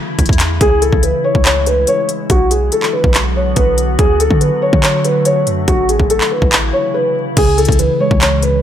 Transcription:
Already playing: ambient pad C#3 E3 A3 E4
0.19 808-style bass A1, kick, closed hi-hat
0.26 808-style bass E2, kick, closed hi-hat
0.33 closed hi-hat
0.40 clap, closed hi-hat
0.61 808-style bass C#2, ambient pad E3 G#3, felt piano G#4, kick, closed hi-hat
0.82 felt piano A4, closed hi-hat
0.93 808-style bass C#2, kick
1.03 felt piano B4, closed hi-hat
1.24 felt piano C#5
1.35 808-style bass C#2, kick
1.45 felt piano C#5, clap, closed hi-hat
1.66 felt piano B4, closed hi-hat
1.87 felt piano C#5, closed hi-hat
2.09 closed hi-hat
2.30 808-style bass B1, ambient pad D3 F#3 B3 F#4, felt piano F#4, kick, closed hi-hat
2.51 felt piano G#4, closed hi-hat
2.72 felt piano A4, closed hi-hat
2.83 clap
2.93 felt piano B4
3.04 808-style bass B1, kick
3.14 clap, closed hi-hat
3.36 felt piano C#5
3.56 808-style bass B1, felt piano B4, kick, closed hi-hat
3.78 closed hi-hat
3.99 808-style bass D2, ambient pad D3 F#3 A3, felt piano G#4, kick, closed hi-hat
4.20 felt piano A4, closed hi-hat
4.31 808-style bass D3, kick
4.41 felt piano B4, closed hi-hat
4.62 felt piano C#5
4.73 808-style bass D3, kick
4.83 felt piano C#5, clap, closed hi-hat
5.04 felt piano B4, closed hi-hat
5.25 felt piano C#5, closed hi-hat
5.47 808-style bass F#2, closed hi-hat
5.68 808-style bass A1, ambient pad C#3 E3 E4, felt piano F#4, kick, closed hi-hat
5.89 felt piano G#4, closed hi-hat
6.00 808-style bass A1, kick
6.10 felt piano A4, closed hi-hat
6.21 clap
6.32 felt piano B4
6.42 808-style bass A1, kick
6.52 clap, closed hi-hat
6.73 felt piano C#5
6.94 felt piano B4
7.37 808-style bass C#2, tine electric piano C#3, felt piano G#4, kick, closed hi-hat, crash
7.58 tine electric piano C#3, felt piano A4, closed hi-hat
7.65 808-style bass C#2, kick, closed hi-hat
7.72 closed hi-hat
7.79 tine electric piano E3, felt piano B4, closed hi-hat
8.00 tine electric piano G#3, felt piano C#5
8.11 808-style bass C#2, kick
8.21 tine electric piano C#3, felt piano C#5, clap, closed hi-hat
8.42 tine electric piano C#3, felt piano B4, closed hi-hat

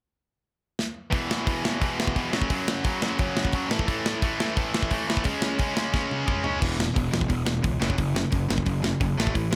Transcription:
0.79 snare
1.11 distorted electric guitar E2 B2 E3, kick, open hi-hat
1.31 snare
1.47 distorted electric guitar E2 B2 E3, kick, open hi-hat
1.63 distorted electric guitar E2 B2 E3, snare
1.80 distorted electric guitar E2 B2 E3, kick, open hi-hat
2.00 snare
2.07 kick
2.15 distorted electric guitar E2 B2 E3, kick, open hi-hat
2.32 distorted electric guitar F#2 C#3 F#3, snare
2.42 kick
2.50 distorted electric guitar F#2 C#3 F#3, kick, open hi-hat
2.68 snare
2.84 distorted electric guitar F#2 C#3 F#3, kick, open hi-hat
3.02 distorted electric guitar F#2 C#3 F#3, snare
3.19 distorted electric guitar F#2 C#3 F#3, kick, open hi-hat
3.37 snare
3.45 kick
3.52 distorted electric guitar F#2 C#3 F#3, kick, open hi-hat
3.71 distorted electric guitar A2 E3 A3, snare
3.79 kick
3.88 distorted electric guitar A2 E3 A3, kick, open hi-hat
4.06 snare
4.22 distorted electric guitar A2 E3 A3, kick, open hi-hat
4.39 distorted electric guitar A2 E3 A3, snare
4.56 distorted electric guitar A2 E3 A3, kick, open hi-hat
4.74 snare
4.83 kick
4.91 distorted electric guitar A2 E3 A3, kick, open hi-hat
5.07 distorted electric guitar A2 E3 A3, snare
5.17 kick
5.24 distorted electric guitar C#3 G#3 C#4, kick, open hi-hat
5.42 snare
5.59 distorted electric guitar C#3 G#3 C#4, kick, open hi-hat
5.74 distorted electric guitar C#3 G#3 C#4, snare
5.93 distorted electric guitar C#3 G#3 C#4, kick, snare
6.11 high tom
6.26 distorted electric guitar C#3 G#3 C#4, kick, mid tom
6.44 distorted electric guitar C#3 G#3 C#4, floor tom
6.59 picked electric bass E1, distorted electric guitar E2 B2 E3, kick, crash
6.78 distorted electric guitar E2 B2, snare
6.94 picked electric bass E1, distorted electric guitar E2 B2, kick, open hi-hat
7.11 picked electric bass E1, distorted electric guitar E2 B2, snare
7.21 kick
7.28 picked electric bass E1, distorted electric guitar E2 B2, kick, open hi-hat
7.45 picked electric bass E1, distorted electric guitar E2 B2, snare
7.62 picked electric bass C#2, distorted electric guitar E2 B2, kick, open hi-hat
7.80 picked electric bass F#1, distorted electric guitar F#2 C#3 F#3, snare
7.90 kick
7.98 picked electric bass F#1, distorted electric guitar F#2 C#3, kick, open hi-hat
8.15 distorted electric guitar F#2 C#3, snare
8.31 picked electric bass F#1, distorted electric guitar F#2 C#3, kick, open hi-hat
8.49 picked electric bass F#1, distorted electric guitar F#2 C#3, snare
8.58 kick
8.65 picked electric bass F#1, distorted electric guitar F#2 C#3, kick, open hi-hat
8.82 distorted electric guitar F#2 C#3, snare
9.00 picked electric bass F#1, distorted electric guitar F#2 C#3, kick, open hi-hat
9.17 picked electric bass A1, distorted electric guitar A2 E3 A3, snare
9.27 kick
9.33 picked electric bass A1, distorted electric guitar A2 E3, kick, open hi-hat
9.51 distorted electric guitar A2 E3

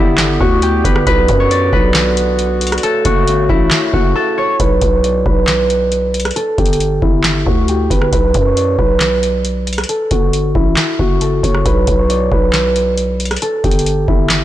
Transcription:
Already playing: 808-style bass G1, woodwind section D3 B3 G4, harp E4 G4 A4 B4
0.18 snare, clap, closed hi-hat
0.41 808-style bass D2, harp F#4, kick
0.62 harp G4, closed hi-hat
0.85 808-style bass G1, harp B4, kick, closed hi-hat
0.96 cross-stick
1.07 808-style bass B1, woodwind section D3 F#4, harp B4, kick, closed hi-hat
1.28 808-style bass F#2, kick, closed hi-hat
1.40 harp C#5
1.51 harp D5, closed hi-hat
1.73 808-style bass B1, harp B4, kick
1.95 snare, clap, closed hi-hat
2.17 closed hi-hat
2.39 closed hi-hat
2.61 closed hi-hat
2.67 closed hi-hat
2.72 cross-stick, closed hi-hat
2.78 closed hi-hat
2.83 woodwind section C#3 A3, harp A4, closed hi-hat
3.05 808-style bass F#1, harp F#4, kick, closed hi-hat
3.27 808-style bass G1, closed hi-hat
3.49 808-style bass A1, harp E4, kick
3.71 snare, clap, closed hi-hat
3.93 808-style bass F#1, harp F#4, kick
4.16 harp A4
4.38 harp C#5
4.60 808-style bass B1, harp B4, kick, closed hi-hat
4.81 808-style bass B1, kick, closed hi-hat
4.93 harp C#5
5.04 harp D5, closed hi-hat
5.26 808-style bass B1, harp B4, kick
5.48 snare, clap, closed hi-hat
5.70 closed hi-hat
5.92 closed hi-hat
6.14 closed hi-hat
6.20 closed hi-hat
6.25 cross-stick, closed hi-hat
6.31 closed hi-hat
6.36 harp A4, closed hi-hat
6.58 808-style bass G1, harp G4, kick, closed hi-hat
6.66 closed hi-hat
6.73 closed hi-hat
6.80 closed hi-hat
7.02 808-style bass G1, harp E4, kick
7.24 snare, clap, closed hi-hat
7.46 808-style bass D2, harp F#4, kick
7.68 harp G4, closed hi-hat
7.90 808-style bass G1, harp B4, kick, closed hi-hat
8.02 cross-stick
8.13 808-style bass B1, harp B4, kick, closed hi-hat
8.34 808-style bass F#2, kick, closed hi-hat
8.46 harp C#5
8.57 harp D5, closed hi-hat
8.79 808-style bass B1, harp B4, kick
9.00 snare, clap, closed hi-hat
9.23 closed hi-hat
9.45 closed hi-hat
9.67 closed hi-hat
9.73 closed hi-hat
9.78 cross-stick, closed hi-hat
9.84 closed hi-hat
9.89 harp A4, closed hi-hat
10.11 808-style bass F#1, harp F#4, kick, closed hi-hat
10.33 808-style bass G1, closed hi-hat
10.55 808-style bass A1, harp E4, kick
10.77 snare, clap, closed hi-hat
10.99 808-style bass F#1, harp F#4, kick
11.21 harp A4, closed hi-hat
11.43 808-style bass F#1, harp C#5, kick, closed hi-hat
11.55 cross-stick
11.66 808-style bass B1, harp B4, kick, closed hi-hat
11.87 808-style bass B1, kick, closed hi-hat
11.99 harp C#5
12.10 harp D5, closed hi-hat
12.32 808-style bass B1, harp B4, kick
12.53 snare, clap, closed hi-hat
12.76 closed hi-hat
12.97 closed hi-hat
13.20 closed hi-hat
13.25 closed hi-hat
13.31 cross-stick, closed hi-hat
13.36 closed hi-hat
13.42 harp A4, closed hi-hat
13.64 808-style bass G1, harp G4, kick, closed hi-hat
13.71 closed hi-hat
13.79 closed hi-hat
13.86 closed hi-hat
14.08 808-style bass G1, harp E4, kick
14.30 snare, clap, closed hi-hat

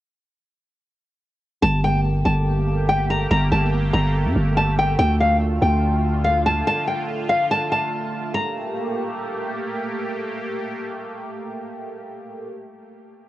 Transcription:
1.62 808-style bass G1, analog synth pad A3 A#3 G4, nylon-string guitar A5
1.84 nylon-string guitar G5
2.25 808-style bass G1, nylon-string guitar A5
2.89 nylon-string guitar G5
3.10 nylon-string guitar A#5
3.31 808-style bass G1, nylon-string guitar A#5
3.52 808-style bass G1, nylon-string guitar A5
3.93 808-style bass G1, nylon-string guitar A#5
4.25 808-style bass G2
4.36 808-style bass G1
4.57 nylon-string guitar A5
4.79 nylon-string guitar G5
4.99 808-style bass D2, analog synth pad D3 F4, nylon-string guitar G5
5.20 nylon-string guitar F5
5.62 808-style bass D2, nylon-string guitar G5
6.24 nylon-string guitar F5
6.46 nylon-string guitar A5
6.67 nylon-string guitar A5
6.87 nylon-string guitar G5
7.29 nylon-string guitar F5
7.51 nylon-string guitar A5
7.72 nylon-string guitar A5
8.34 analog synth pad A3 A#3 G4, nylon-string guitar A#5

